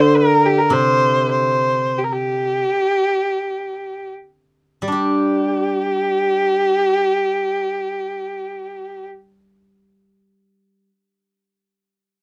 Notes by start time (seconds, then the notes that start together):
Already playing: D3
0.00 C5
0.16 A#4
0.45 G4
0.58 A#4
0.70 C3 C5
1.31 C5
1.98 G4
2.04 A#4
2.12 G4
4.82 G3
4.88 D4
4.92 G4